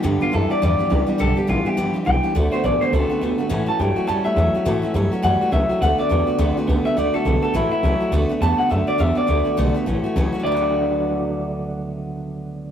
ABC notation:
X:1
M:4/4
L:1/8
Q:"Swing" 1/4=208
K:D
V:1 name="Clean electric guitar"
z =F A d d4 | A G =F G2 z g2 | z =c d c A4 | z a g2 a e3- |
e3 z f2 e2 | f d4 z2 e | d A2 A E E3 | z2 a f e d e d- |
d3 z4 z | d8- | d8 |]
V:2 name="Steel-string acoustic guitar"
[G,,D,E,G,B,G] [E,G,B,G] [E,G,B,G] [E,G,B,G] [G,,D,E,G,B,G] [E,G,B,G] [E,G,B,G] [E,G,B,G] | [G,,D,E,G,B,G] [E,G,B,G] [E,G,B,G] [E,G,B,G] [G,,D,E,G,B,G] [E,G,B,G] [E,G,B,G] [E,G,B,G] | [D,A,B,F] [A,B,F] [D,A,B,F] [A,B,F] [D,A,B,F] [A,B,F] [D,A,B,F] [A,B,F] | [A,,E,A,CF] [A,CF] [E,A,CF] [A,CF] [A,,E,A,CF] [A,CF] [E,A,CF] [A,CF] |
[A,,E,A,CF] [A,CF] [E,A,CF] [A,CF] [A,,E,A,CF] [A,CF] [E,A,CF] [A,CF] | [D,A,B,F] [A,B,F] [D,A,B,F] [A,B,F] [D,A,B,F] [A,B,F] [D,A,B,F] [A,B,F] | [D,A,B,F] [A,B,F] [D,A,B,F] [A,B,F] [A,,E,A,CF] [A,CF] [E,A,CF] [A,CF] | [D,A,B,F] [A,B,F] [D,A,B,F] [A,B,F] [D,A,B,F] [A,B,F] [D,A,B,F] [A,B,F] |
[D,A,B,F] [A,B,F] [D,A,B,F] [A,B,F] [E,A,CF] [A,CF] [A,,E,A,CF] [A,CF] | [D,A,B,F]8- | [D,A,B,F]8 |]
V:3 name="Clean electric guitar" clef=bass
[G,,D,]2 [G,,E,]2 [G,,=F,]2 [G,,E,]2 | [G,,D,]2 [G,,E,]2 [G,,=F,]2 [G,,E,]2 | [D,A,]2 [D,B,]2 [D,=C]2 [D,B,]2 | [A,,E,]2 [A,,F,]2 [A,,G,]2 [A,,F,]2 |
[A,,E,]2 [A,,F,]2 [A,,G,]2 [A,,F,]2 | [D,A,]2 [D,B,]2 [D,=C]2 [D,B,]2 | [D,A,]2 [D,B,]2 [A,,E,]2 [A,,F,]2 | [D,A,]2 [D,B,]2 [D,A,]2 [D,B,]2 |
[D,A,]2 [D,B,]2 [A,,E,]2 [A,,F,]2 | [D,F,A,DFB]8- | [D,F,A,DFB]8 |]
V:4 name="Upright bass" clef=bass
G,, z F,, z E,, z C,, z | B,,, z A,,, z G,,, z B,,, z | D,, z A,,, z C,, z D,, z | A,, z G,, z F,, z E,, z |
A,, z G,, z F,, z C,, z | D,, z E,, z D,, z C,, z | D,, z B,,, z A,,, z C,, z | D,, z E,, z F,, z E,, z |
D,, z B,,, z A,,, z C,, z | D,,8- | D,,8 |]